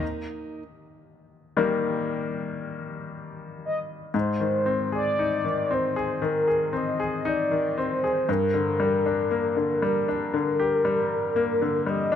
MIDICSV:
0, 0, Header, 1, 4, 480
1, 0, Start_track
1, 0, Key_signature, -3, "major"
1, 0, Tempo, 1034483
1, 9, Time_signature, 4, 2, 24, 8
1, 2889, Tempo, 1025641
1, 5664, End_track
2, 0, Start_track
2, 0, Title_t, "Soft synth lead"
2, 0, Program_c, 0, 80
2, 1695, Note_on_c, 0, 75, 67
2, 1760, Note_off_c, 0, 75, 0
2, 1937, Note_on_c, 0, 72, 75
2, 2274, Note_off_c, 0, 72, 0
2, 2298, Note_on_c, 0, 74, 77
2, 2663, Note_on_c, 0, 72, 80
2, 2670, Note_off_c, 0, 74, 0
2, 2902, Note_on_c, 0, 70, 82
2, 2909, Note_off_c, 0, 72, 0
2, 3145, Note_on_c, 0, 75, 82
2, 3152, Note_off_c, 0, 70, 0
2, 3383, Note_on_c, 0, 74, 90
2, 3390, Note_off_c, 0, 75, 0
2, 3622, Note_on_c, 0, 72, 75
2, 3629, Note_off_c, 0, 74, 0
2, 3866, Note_on_c, 0, 70, 83
2, 3873, Note_off_c, 0, 72, 0
2, 4577, Note_off_c, 0, 70, 0
2, 4583, Note_on_c, 0, 70, 95
2, 5543, Note_on_c, 0, 75, 83
2, 5550, Note_off_c, 0, 70, 0
2, 5664, Note_off_c, 0, 75, 0
2, 5664, End_track
3, 0, Start_track
3, 0, Title_t, "Steel-string acoustic guitar"
3, 0, Program_c, 1, 25
3, 0, Note_on_c, 1, 58, 55
3, 0, Note_on_c, 1, 63, 47
3, 0, Note_on_c, 1, 70, 57
3, 289, Note_off_c, 1, 58, 0
3, 289, Note_off_c, 1, 63, 0
3, 289, Note_off_c, 1, 70, 0
3, 5664, End_track
4, 0, Start_track
4, 0, Title_t, "Grand piano"
4, 0, Program_c, 2, 0
4, 0, Control_c, 2, 64, 127
4, 15, Control_c, 2, 64, 0
4, 90, Control_c, 2, 64, 127
4, 727, Note_on_c, 2, 51, 46
4, 729, Note_on_c, 2, 55, 40
4, 734, Note_on_c, 2, 58, 50
4, 1903, Note_off_c, 2, 51, 0
4, 1904, Note_off_c, 2, 55, 0
4, 1906, Note_off_c, 2, 58, 0
4, 1922, Note_on_c, 2, 44, 43
4, 1928, Control_c, 2, 64, 0
4, 1999, Control_c, 2, 64, 127
4, 2042, Note_on_c, 2, 51, 35
4, 2162, Note_on_c, 2, 60, 41
4, 2285, Note_on_c, 2, 68, 40
4, 2408, Note_on_c, 2, 63, 39
4, 2520, Note_off_c, 2, 51, 0
4, 2527, Note_on_c, 2, 51, 33
4, 2641, Note_off_c, 2, 60, 0
4, 2648, Note_on_c, 2, 60, 40
4, 2760, Note_off_c, 2, 68, 0
4, 2767, Note_on_c, 2, 68, 41
4, 2877, Note_off_c, 2, 51, 0
4, 2884, Note_on_c, 2, 51, 45
4, 2999, Note_off_c, 2, 68, 0
4, 3006, Note_on_c, 2, 68, 35
4, 3117, Note_off_c, 2, 60, 0
4, 3124, Note_on_c, 2, 60, 40
4, 3242, Note_off_c, 2, 68, 0
4, 3249, Note_on_c, 2, 68, 40
4, 3351, Note_off_c, 2, 63, 0
4, 3369, Note_on_c, 2, 63, 45
4, 3484, Note_off_c, 2, 51, 0
4, 3491, Note_on_c, 2, 51, 36
4, 3608, Note_off_c, 2, 60, 0
4, 3615, Note_on_c, 2, 60, 36
4, 3730, Note_off_c, 2, 68, 0
4, 3737, Note_on_c, 2, 68, 40
4, 3831, Note_off_c, 2, 44, 0
4, 3836, Note_off_c, 2, 63, 0
4, 3840, Note_off_c, 2, 51, 0
4, 3846, Note_off_c, 2, 60, 0
4, 3850, Note_off_c, 2, 68, 0
4, 3853, Note_on_c, 2, 43, 47
4, 3857, Control_c, 2, 64, 0
4, 3936, Control_c, 2, 64, 127
4, 3973, Note_on_c, 2, 50, 42
4, 4092, Note_on_c, 2, 55, 41
4, 4215, Note_on_c, 2, 62, 39
4, 4332, Note_on_c, 2, 58, 42
4, 4446, Note_off_c, 2, 50, 0
4, 4453, Note_on_c, 2, 50, 39
4, 4566, Note_off_c, 2, 55, 0
4, 4573, Note_on_c, 2, 55, 43
4, 4687, Note_off_c, 2, 62, 0
4, 4694, Note_on_c, 2, 62, 39
4, 4806, Note_off_c, 2, 50, 0
4, 4813, Note_on_c, 2, 50, 51
4, 4934, Note_on_c, 2, 67, 41
4, 5045, Note_off_c, 2, 55, 0
4, 5052, Note_on_c, 2, 55, 42
4, 5270, Note_off_c, 2, 58, 0
4, 5291, Note_on_c, 2, 58, 48
4, 5404, Note_off_c, 2, 50, 0
4, 5411, Note_on_c, 2, 50, 42
4, 5521, Note_off_c, 2, 55, 0
4, 5528, Note_on_c, 2, 55, 35
4, 5630, Note_off_c, 2, 62, 0
4, 5647, Note_on_c, 2, 62, 44
4, 5664, Note_off_c, 2, 43, 0
4, 5664, Note_off_c, 2, 50, 0
4, 5664, Note_off_c, 2, 55, 0
4, 5664, Note_off_c, 2, 58, 0
4, 5664, Note_off_c, 2, 62, 0
4, 5664, Note_off_c, 2, 67, 0
4, 5664, End_track
0, 0, End_of_file